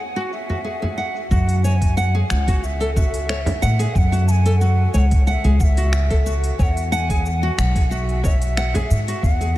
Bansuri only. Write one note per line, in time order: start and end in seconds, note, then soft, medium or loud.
0.00 0.31 F#5 medium
0.32 1.27 E5 medium
1.31 1.62 F#5 loud
1.64 1.95 G#5 medium
1.97 2.05 F#5 medium
2.29 2.65 F#5 medium
2.63 2.95 E5 medium
2.95 3.96 E5 medium
3.94 4.27 F#5 loud
3.94 3.99 G#5 medium
4.27 4.54 G#5 medium
4.27 4.32 A5 medium
4.54 4.62 G#5 medium
4.60 4.92 F#5 medium
4.93 4.99 G#5 medium
4.98 5.24 F#5 medium
5.26 5.31 F#5 medium
5.30 5.57 E5 medium
5.59 5.64 F#5 medium
5.63 6.28 E5 medium
6.58 6.64 G#5 medium
6.63 6.93 F#5 loud
6.92 6.97 A5 medium
6.96 7.24 G#5 medium
7.25 7.55 F#5 medium
7.25 7.29 G#5 medium
7.58 7.92 F#5 medium
7.90 8.23 E5 medium
8.24 9.25 E5 loud
9.23 9.58 F#5 loud